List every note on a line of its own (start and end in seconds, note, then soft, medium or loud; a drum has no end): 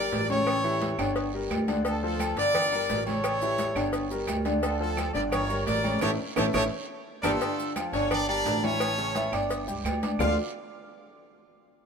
0.00 0.23 G3 medium
0.00 0.24 G4 medium
0.00 0.24 A#4 medium
0.00 0.26 A#4 loud
0.00 0.26 D5 loud
0.12 0.93 A1 loud
0.12 cowbell medium
0.12 high conga soft
0.12 low timbale medium
0.12 short guiro medium
0.29 0.58 C#3 loud
0.29 0.58 C#4 loud
0.29 1.30 A4 medium
0.29 0.58 C#5 loud
0.29 1.30 C#5 loud
0.29 high conga medium
0.29 low agogo medium
0.29 short guiro medium
0.47 cowbell loud
0.47 high conga soft
0.47 low agogo loud
0.47 long guiro medium
0.47 claves medium
0.64 0.92 E3 medium
0.64 0.93 E4 medium
0.64 0.93 G4 medium
0.64 high conga soft
0.81 cowbell medium
0.81 high conga loud
0.81 low timbale medium
0.81 low agogo medium
0.81 short guiro medium
0.98 1.47 G1 medium
0.98 1.27 D3 medium
0.98 1.28 D4 loud
0.98 1.28 C#5 medium
0.98 cowbell medium
0.98 high conga soft
0.98 low agogo loud
0.98 short guiro medium
0.98 claves medium
1.16 cowbell loud
1.16 high conga soft
1.16 low agogo medium
1.16 long guiro medium
1.34 1.62 G3 medium
1.34 1.62 G4 medium
1.34 1.63 A#4 medium
1.34 high conga soft
1.50 2.31 D2 loud
1.50 cowbell medium
1.50 high conga soft
1.50 low timbale medium
1.50 low agogo loud
1.50 short guiro medium
1.50 claves medium
1.68 1.82 D3 loud
1.68 1.82 D4 medium
1.68 1.82 D5 loud
1.68 cowbell medium
1.68 high conga medium
1.68 low agogo medium
1.68 short guiro medium
1.85 1.99 D3 medium
1.85 2.00 D4 medium
1.85 2.02 F4 medium
1.85 2.02 A4 loud
1.85 2.00 D5 medium
1.85 cowbell loud
1.85 high conga soft
1.85 low agogo medium
1.85 long guiro medium
1.85 maracas medium
2.02 2.31 F3 medium
2.02 2.32 F4 medium
2.02 2.35 F4 medium
2.02 2.35 A4 loud
2.02 2.32 A4 medium
2.02 high conga soft
2.19 cowbell medium
2.19 high conga medium
2.19 low timbale medium
2.19 low agogo loud
2.19 short guiro medium
2.19 claves medium
2.19 maracas medium
2.36 2.85 G1 medium
2.36 2.66 D3 loud
2.36 2.66 D4 loud
2.36 3.03 A#4 loud
2.36 3.03 D5 loud
2.36 2.67 D5 loud
2.36 cowbell medium
2.36 high conga soft
2.36 short guiro medium
2.36 maracas soft
2.54 cowbell loud
2.54 high conga soft
2.54 low conga medium
2.54 low agogo loud
2.54 long guiro medium
2.54 claves medium
2.54 maracas medium
2.72 3.01 G3 medium
2.72 3.01 G4 medium
2.72 3.01 A#4 medium
2.72 high conga soft
2.72 low agogo loud
2.72 maracas medium
2.89 3.70 A1 loud
2.89 cowbell medium
2.89 high conga soft
2.89 low timbale medium
2.89 short guiro medium
2.89 maracas medium
3.06 3.35 C#3 loud
3.06 3.35 C#4 loud
3.06 4.07 A4 medium
3.06 4.07 C#5 loud
3.06 3.35 C#5 loud
3.06 high conga medium
3.06 low agogo medium
3.06 short guiro medium
3.06 maracas soft
3.24 cowbell loud
3.24 high conga soft
3.24 low agogo loud
3.24 long guiro medium
3.24 claves medium
3.24 maracas medium
3.41 3.70 E3 medium
3.41 3.70 E4 medium
3.41 3.70 G4 medium
3.41 high conga soft
3.41 maracas medium
3.58 cowbell medium
3.58 high conga loud
3.58 low timbale medium
3.58 low agogo medium
3.58 short guiro medium
3.58 maracas medium
3.75 4.24 G1 medium
3.75 4.04 D3 medium
3.75 4.04 D4 loud
3.75 4.05 C#5 loud
3.75 cowbell medium
3.75 high conga soft
3.75 low agogo loud
3.75 short guiro medium
3.75 claves medium
3.75 maracas soft
3.93 cowbell loud
3.93 high conga soft
3.93 low agogo medium
3.93 long guiro medium
3.93 maracas medium
4.10 4.39 G3 medium
4.10 4.39 G4 medium
4.10 4.40 A#4 medium
4.10 high conga soft
4.10 maracas medium
4.27 5.09 D2 loud
4.27 cowbell medium
4.27 high conga soft
4.27 low timbale medium
4.27 low agogo loud
4.27 short guiro medium
4.27 claves medium
4.27 maracas medium
4.45 4.60 D3 medium
4.45 4.60 D4 medium
4.45 4.60 D5 medium
4.45 cowbell medium
4.45 high conga loud
4.45 low agogo loud
4.45 short guiro medium
4.45 maracas soft
4.62 4.77 D3 medium
4.62 4.77 D4 medium
4.62 4.79 F4 medium
4.62 4.79 A4 medium
4.62 4.77 D5 medium
4.62 cowbell loud
4.62 low agogo loud
4.62 long guiro medium
4.62 maracas medium
4.79 5.08 F3 medium
4.79 5.09 F4 medium
4.79 5.13 F4 medium
4.79 5.13 A4 medium
4.79 5.09 A4 medium
4.79 high conga soft
4.97 cowbell medium
4.97 high conga medium
4.97 low timbale medium
4.97 low agogo loud
4.97 short guiro medium
4.97 claves medium
4.97 maracas medium
5.14 5.63 G1 loud
5.14 5.43 D3 medium
5.14 5.43 D4 medium
5.14 5.23 A#4 medium
5.14 5.22 D5 loud
5.14 5.43 D5 loud
5.14 cowbell medium
5.14 high conga soft
5.14 short guiro medium
5.14 maracas soft
5.31 5.65 A#4 medium
5.31 5.64 C#5 loud
5.31 cowbell loud
5.31 high conga soft
5.31 low conga medium
5.31 low agogo loud
5.31 long guiro medium
5.31 claves medium
5.31 maracas medium
5.49 5.78 G3 medium
5.49 5.78 G4 medium
5.49 5.78 A#4 medium
5.49 high conga soft
5.49 low agogo medium
5.49 maracas medium
5.66 5.99 A1 loud
5.66 6.00 A#4 medium
5.66 5.99 D5 loud
5.66 cowbell medium
5.66 high conga soft
5.66 low timbale medium
5.66 short guiro medium
5.66 maracas medium
5.84 5.99 C#3 loud
5.84 5.99 C#4 loud
5.84 5.99 C#5 medium
5.84 high conga medium
5.84 low agogo medium
5.84 short guiro medium
5.84 maracas soft
6.01 6.15 A1 loud
6.01 6.13 A3 medium
6.01 6.13 C#4 loud
6.01 6.13 E4 loud
6.01 6.10 G4 loud
6.01 6.11 A4 loud
6.01 6.11 C#5 loud
6.01 cowbell loud
6.01 low conga loud
6.01 high timbale loud
6.01 long guiro loud
6.01 claves medium
6.01 maracas loud
6.36 6.50 A1 loud
6.36 6.48 A3 loud
6.36 6.48 C#4 loud
6.36 6.48 E4 loud
6.36 6.45 G4 loud
6.36 6.45 A4 loud
6.36 6.45 C#5 loud
6.36 cowbell loud
6.36 low conga loud
6.36 high timbale loud
6.36 claves loud
6.36 maracas loud
6.54 6.67 A1 loud
6.54 6.65 A3 loud
6.54 6.66 C#4 loud
6.54 6.65 E4 loud
6.54 6.63 G4 loud
6.54 6.63 A4 loud
6.54 6.63 C#5 loud
6.54 cowbell loud
6.54 low conga loud
6.54 high timbale loud
6.54 long guiro loud
6.54 claves loud
6.54 maracas loud
7.22 7.36 G1 loud
7.22 7.72 A3 medium
7.22 7.35 A#3 loud
7.22 7.35 D4 loud
7.22 7.73 F4 medium
7.22 7.31 G4 medium
7.22 7.35 G4 loud
7.22 7.72 A4 medium
7.22 7.31 A#4 medium
7.22 7.31 D5 loud
7.22 cowbell loud
7.22 low conga loud
7.22 high timbale loud
7.22 long guiro loud
7.22 claves loud
7.22 maracas loud
7.41 7.70 D3 medium
7.41 7.70 D4 medium
7.41 7.71 D5 medium
7.41 cowbell loud
7.41 high conga soft
7.41 low agogo medium
7.41 long guiro medium
7.41 maracas medium
7.59 high conga soft
7.59 maracas medium
7.76 7.91 F3 medium
7.76 7.91 F4 medium
7.76 7.91 F5 medium
7.76 cowbell medium
7.76 high conga medium
7.76 low timbale medium
7.76 low agogo loud
7.76 short guiro medium
7.76 claves medium
7.76 maracas medium
7.93 8.42 G1 medium
7.93 8.22 D3 medium
7.93 8.10 C#4 medium
7.93 8.23 D4 medium
7.93 8.10 A4 medium
7.93 8.10 C#5 medium
7.93 8.23 D5 loud
7.93 cowbell medium
7.93 high conga soft
7.93 short guiro medium
7.93 maracas soft
8.11 8.27 D4 loud
8.11 8.28 A#4 medium
8.11 8.27 D5 loud
8.11 cowbell loud
8.11 high conga soft
8.11 low conga medium
8.11 low agogo loud
8.11 long guiro medium
8.11 claves medium
8.11 maracas medium
8.28 8.43 G3 medium
8.28 8.61 D4 medium
8.28 8.43 G4 medium
8.28 8.61 A#4 medium
8.28 8.61 D5 loud
8.28 8.43 G5 medium
8.28 high conga soft
8.28 low agogo loud
8.45 9.27 A1 loud
8.45 8.60 D3 medium
8.45 8.60 D4 medium
8.45 8.61 D5 medium
8.45 cowbell medium
8.45 high conga soft
8.45 low timbale medium
8.45 short guiro medium
8.45 maracas medium
8.62 8.91 E3 medium
8.62 9.33 C#4 loud
8.62 8.92 E4 medium
8.62 9.33 A4 medium
8.62 9.33 C#5 loud
8.62 8.92 E5 medium
8.62 high conga medium
8.62 low agogo medium
8.62 short guiro medium
8.62 maracas soft
8.80 cowbell loud
8.80 high conga soft
8.80 low agogo loud
8.80 long guiro medium
8.80 claves medium
8.80 maracas medium
8.98 9.12 C#3 loud
8.98 9.13 C#4 loud
8.98 9.13 C#5 loud
8.98 high conga soft
8.98 maracas medium
9.15 9.30 E3 medium
9.15 9.30 E4 medium
9.15 9.31 E5 medium
9.15 cowbell medium
9.15 high conga loud
9.15 low timbale medium
9.15 low agogo loud
9.15 short guiro medium
9.15 maracas medium
9.32 9.65 G1 medium
9.32 9.62 D4 medium
9.32 9.62 D5 medium
9.32 9.62 D6 medium
9.32 cowbell medium
9.32 high conga soft
9.32 low agogo loud
9.32 short guiro medium
9.32 claves medium
9.32 maracas soft
9.50 cowbell loud
9.50 high conga soft
9.50 low agogo medium
9.50 long guiro medium
9.50 maracas medium
9.67 9.83 C#2 medium
9.67 9.96 G3 medium
9.67 9.96 G4 medium
9.67 9.96 G5 medium
9.67 high conga soft
9.67 maracas medium
9.84 10.15 D2 loud
9.84 cowbell medium
9.84 high conga soft
9.84 low timbale medium
9.84 low agogo loud
9.84 short guiro medium
9.84 claves medium
9.84 maracas medium
10.03 10.17 D4 medium
10.03 10.17 D5 medium
10.03 10.17 D6 medium
10.03 cowbell medium
10.03 high conga medium
10.03 low agogo loud
10.03 short guiro medium
10.03 maracas soft
10.19 10.36 D2 loud
10.19 10.36 D3 medium
10.19 10.36 A3 medium
10.19 10.36 D4 medium
10.19 10.36 F4 medium
10.19 10.36 A4 medium
10.19 10.36 D5 medium
10.19 10.36 F5 medium
10.19 low bongo loud
10.19 low conga loud
10.19 low timbale loud
10.19 long guiro loud
10.19 claves medium
10.19 maracas loud